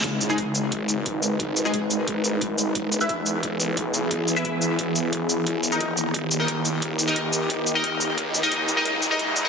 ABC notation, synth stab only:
X:1
M:4/4
L:1/16
Q:1/4=177
K:G#m
V:1 name="Synth stab"
z3 [G,DG] z12 | z3 [G,DG] z12 | z3 [EBe] z12 | z3 [EBe] z12 |
z3 [DAd] z6 z [DAd] z4 | z3 [DAd] z6 z [DAd] z4 | z3 [DAd] z3 [DAd] z3 [DAd] z3 [DAd] |]